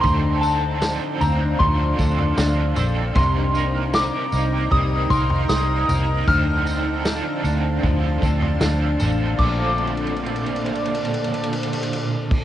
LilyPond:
<<
  \new Staff \with { instrumentName = "Synth bell" } { \time 4/4 \key bes \major \tempo 4 = 77 c'''8 a''4 bes''8 c'''4. r8 | c'''4 d'''4 ees'''8 c'''8 ees'''4 | f'''2. r4 | d'''1 | }
  \new Staff \with { instrumentName = "Ambient pad" } { \time 4/4 \key bes \major << { <d' f''>1 | <ees' g'' bes''>1 | <d' f'' a''>1 | <bes, a' c'' d''>1 | } \\ { c''1~ | c''1~ | c''1 | r1 | } >> }
  \new Staff \with { instrumentName = "Clean electric guitar" } { \time 4/4 \key bes \major d8 d'4 c'16 d'16 f8 a'8 d'8 a'8 | c8 ees'8 bes'8 ees'8 g8 bes'8 ees'8 bes'8 | d8 c'16 d'16 a'8 d'8 f8 a'8 d'8 a'8 | <bes, d a c' f' a'>1 | }
  \new Staff \with { instrumentName = "Overdriven electric guitar" } { \time 4/4 \key bes \major <d f c' d' a'>8 <c' d' a'>8 <f c' d' a'>8 <c' d'>8 <d f c' d' a'>8 <c' d' a'>8 <f c' d' a'>8 <c' d' a'>8 | <c g bes ees' bes'>8 <bes ees' bes'>8 <g bes ees' bes'>8 <bes ees' bes'>8 <c g bes ees' bes'>8 <bes ees' bes'>8 <g bes ees' bes'>8 <bes ees' bes'>8 | <d f c' d' a'>8 <c' d' a'>8 <f c' d' a'>8 <c' d' a'>8 <d f c' d' a'>8 <c' d' a'>8 <f c' d' a'>8 <c' d' a'>8 | <bes, d a c' f' a'>1 | }
  \new Staff \with { instrumentName = "Fingered electric bass" } { \clef bass \time 4/4 \key bes \major d,4~ d,16 r16 d,8 d,8 d,8 d,8 bes,,8 | c,4~ c,16 r16 c,8 c,8 c,8 c,8 c,8 | d,4~ d,16 r16 d,8 d,8 d,8 d,8 a,,8 | bes,,1 | }
  \new DrumStaff \with { instrumentName = "Drums" } \drummode { \time 4/4 <bd tamb tomfh>8 tamb8 <sn tamb>8 <tamb tomfh>8 <bd tomfh>8 <bd tamb>16 tomfh16 <sn tamb>8 <tamb tomfh>8 | <bd tamb tomfh>8 tamb8 <sn tamb>8 tamb8 <bd tomfh>8 <bd tamb>16 tomfh16 <sn tamb>8 <tamb tomfh>8 | <bd tamb tomfh>8 tamb8 <sn tamb>8 tamb8 <bd tomfh>8 <bd tamb>16 tomfh16 <sn tamb>8 <tamb tomfh>8 | <cymc bd>8 cymc32 cymr32 cymc32 cymr32 cymc32 cymr32 cymc32 cymr32 cymc32 cymr32 cymc32 cymr32 cymc32 cymr32 cymc32 cymr32 cymc32 cymr32 cymc32 cymr32 cymc32 cymr32 cymc8 <cymc bd>16 | }
>>